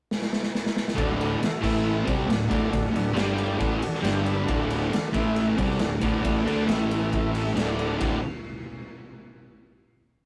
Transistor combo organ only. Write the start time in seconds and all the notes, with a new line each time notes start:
0.96 F#4 A4 D5
1.20 F#4 A4 D5
1.42 F#4 A4 E5
1.63 E4 A4 E5
2.07 F#4 A4 D5
2.48 F#4 A4 D5
2.70 F#4 A4 D5
2.93 F#4 A4 D5
3.14 D4 G4 D5
3.38 D4 G4 D5
3.58 F#4 A4 D5
3.81 F#4 A4 D5
4.02 D4 G4 D5 G5
4.24 D4 G4 D5 B5
4.44 F#4 A4 D5
4.69 F#4 A4 D5
4.90 F#4 A4 D5
5.15 E4 A4 E5
5.58 F#4 A4 D5
6.02 F#4 A4 D5
6.21 F#4 A4 D5
6.46 F#4 A4 D5
6.70 E4 A4 E5
6.91 E4 A4 E5
7.14 E4 A4 E5
7.36 E4 A4 E5
7.58 F#4 A4 D5
7.79 F#4 A4 D5
8.00 F#4 A4 D5